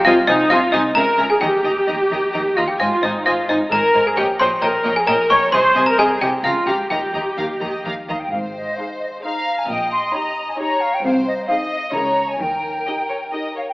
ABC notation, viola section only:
X:1
M:3/4
L:1/16
Q:1/4=132
K:Ab
V:1 name="Viola section"
F2 E2 F2 E2 B3 A | G8- G2 F G | F2 E2 F2 E2 B3 A | G2 c2 B3 A B2 d2 |
c3 B A2 G2 F2 G2 | G8 z4 | z4 [EA]4 [EA]4 | z4 [EG]4 [EG]4 |
z4 [EA]4 [_FA]4 | z4 [EG]4 [EG]4 |]